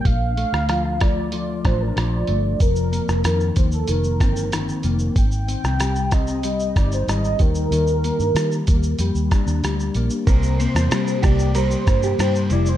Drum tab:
RD |----------------|----------------|----------------|----------------|
HH |x-x-x-x-x-x-x-x-|x-x-x-x-x-x-x-x-|x-x-x-x-x-x-x-x-|x-x-x-x-x-x-x-x-|
SH |----------------|xxxxxxxxxxxxxxxx|xxxxxxxxxxxxxxxx|xxxxxxxxxxxxxxxx|
SD |---rr-r---r-r---|---rr-----r-r---|---rr-r---r-r---|----r-----r-r---|
BD |o-----o---o-----|o-----o---o-----|o-----o---o---o-|------o---o-----|

RD |x-x-x-x-x-x-x-x-|
HH |----------------|
SH |xxxxxxxxxxxxxxxx|
SD |---rr-r---r-r---|
BD |o-----o---o-----|